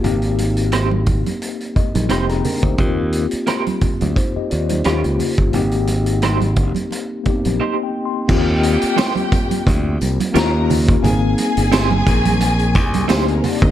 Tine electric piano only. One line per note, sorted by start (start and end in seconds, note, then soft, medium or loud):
0.02 0.96 A#3 medium
0.02 0.96 C4 medium
0.02 0.97 D#4 medium
0.02 0.97 G4 medium
1.76 2.08 D#5 medium
1.94 2.10 G3 soft
1.94 2.09 D#4 medium
2.11 2.29 A#3 soft
2.11 2.28 G4 medium
2.11 2.28 G5 medium
2.29 2.44 C4 medium
2.29 2.44 G#4 medium
2.29 2.76 A#5 medium
2.45 2.63 D4 medium
2.45 2.62 A#4 medium
2.63 2.96 D#4 soft
2.63 2.96 C5 medium
2.77 3.71 A#3 medium
2.77 3.71 C4 medium
2.77 3.72 F4 medium
2.77 3.72 G4 medium
4.17 4.34 D#4 soft
4.17 4.34 C5 medium
4.36 4.51 G4 medium
4.36 4.51 D#5 medium
4.51 4.69 F4 medium
4.51 4.68 D5 medium
4.69 5.02 D#4 soft
4.69 5.02 C5 medium
4.84 5.41 A#3 medium
4.84 5.41 C#4 medium
4.84 5.42 F4 medium
4.84 5.42 G4 medium
5.52 6.46 A#3 medium
5.52 6.47 C4 medium
5.52 6.47 D#4 medium
5.52 6.48 G4 medium
7.24 7.94 A#3 medium
7.24 7.32 B3 medium
7.24 7.95 D#4 medium
7.24 7.95 G4 medium
7.32 7.98 C4 medium
7.61 7.82 D#5 medium
7.83 8.05 G5 medium
8.05 8.27 C6 medium
8.28 9.21 A#3 medium
8.28 9.22 C4 medium
8.28 9.22 F4 medium
8.28 9.23 G4 medium
10.32 10.80 A#3 medium
10.32 10.81 C#4 medium
10.32 10.82 F4 medium
10.32 10.82 G4 medium
11.03 11.96 A#3 medium
11.03 11.96 C4 medium
11.03 11.97 D#4 medium
11.03 11.97 G#4 loud
13.08 13.55 A#3 medium
13.08 13.56 C4 medium
13.08 13.56 D#4 medium
13.08 13.57 G4 medium